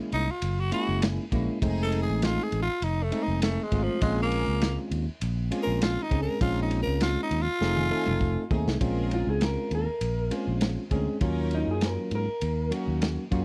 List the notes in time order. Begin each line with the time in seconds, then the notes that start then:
Already playing: G#3 A#3 C#4 E4
0.12 C2 D#4, ride
0.28 F4, muted fingered electric bass stroke
0.42 F#1, ride
0.60 F#4
0.71 G#3 A#3 C#4 E4 F#4 G#4, ride
0.89 F#1
1.02 snare, ride
1.32 A#1 G#3 A#3 C#4 E4 F#4, kick, ride
1.62 F1 G#3 A3 C4 D#4 G#4, kick, ride
1.83 A4
1.92 ride
2.02 G#4
2.08 A1
2.22 F4, snare, ride
2.43 G#4
2.52 A1, ride
2.62 F4
2.68 muted fingered electric bass stroke
2.82 F1 D#4, ride
3.03 A3
3.11 G#3 A3 C4 D#4 G#4, ride
3.23 D#4
3.28 F1
3.42 A3, snare, ride
3.63 G#3
3.72 G#1 G#3 A3 C4 D#4 F4, kick, ride
3.83 F3
4.01 A#1 G#3 A#3 C4 C#4 F4 G#4, kick, ride
4.22 A#3
4.31 ride
4.48 C#2
4.61 snare, ride
4.91 D#2, ride
5.08 muted fingered electric bass stroke
5.21 A#1, ride
5.51 G#3 A#3 C4 C#4 F4 G#4, ride
5.63 A#4
5.67 A#1
5.82 F4, snare, ride
6.02 D#4
6.11 C#2 G#3 A#3 C4 C#4 G#4, kick, ride
6.22 A#4
6.40 A#1 G#3 A#3 C4 C#4 D#4 F4, kick, ride
6.62 D#4
6.71 ride
6.83 A#4
6.87 C#2
7.01 F4, snare, ride
7.23 D#4
7.31 D#2, ride
7.42 F4
7.47 muted fingered electric bass stroke
7.60 F1 A3 C4 D#4 G#4, snare
7.76 high tom
7.90 A3 C4 D#4 A4 G#5
8.07 F1, mid tom
8.21 kick
8.50 D#2 A3 C4 D#4 G#4, kick
8.67 C2, snare
8.81 A#1 G#3 C4 C#4 F4 G#4 A#4, kick, ride
9.11 F4, ride
9.27 C#2 G#4
9.41 A#4, snare, ride
9.71 D#2 A#4, ride
9.87 muted fingered electric bass stroke
10.01 A#1, ride
10.30 G#3 A#3 C4 C#4 F4 G#4 C5, ride
10.48 A#1
10.61 snare, ride
10.91 D2 G#3 C4 C#4 F4 G#4 A#4, kick, ride
11.21 D#2 F#3 A#3 C#4 D#4 F4 A#4, kick, ride
11.51 D#4, ride
11.67 F#2 G#4
11.81 snare, ride
11.85 A#4
12.11 G#2, ride
12.15 A#4
12.27 muted fingered electric bass stroke
12.41 D#2, ride
12.71 F#3 A#3 C#4 D#4 F#4 A#4, ride
12.88 D#2
13.02 snare, ride
13.31 F#2 F#3 A#3 C#4 D#4 F4 F#4 G#4, kick, ride